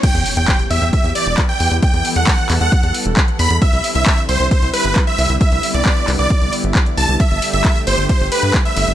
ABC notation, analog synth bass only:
X:1
M:4/4
L:1/16
Q:1/4=134
K:Em
V:1 name="Analog synth bass" clef=bass
z E,, z E,, z2 E,, E,, z E,, z E,,, z2 E,, E,, | z E,, z E,, z2 E,, E,, z E,, z E,,, z2 E,, E,, | z C,, z C,, z2 C,, C,, z C,, z G,,, z2 C,, C,, | z C,, z C,, z2 C,, C,, z C,, z G,,, z2 C,, C,, |
z G,,, z G,,, z2 G,,, G,,, z G,,, z G,, z2 G,,, G,,, |]